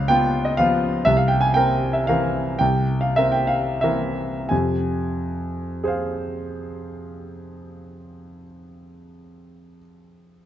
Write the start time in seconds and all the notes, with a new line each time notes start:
Already playing: C#2 F5
0.08 B3 F4 G5
0.45 D#5
0.57 F3 B3 F4 F5
1.05 C2 E5
1.17 F5
1.28 G5
1.41 G#5
1.54 C4 A#4 G5
1.93 E5
2.07 E3 C4 A#4 F5
2.59 C2 G5
3.01 F5
3.16 C4 A#4 E5
3.32 G5
3.47 F5
3.81 E3 C4 A#4 E5
4.49 F2 C3 G#5
5.84 G#4 C5
5.88 F5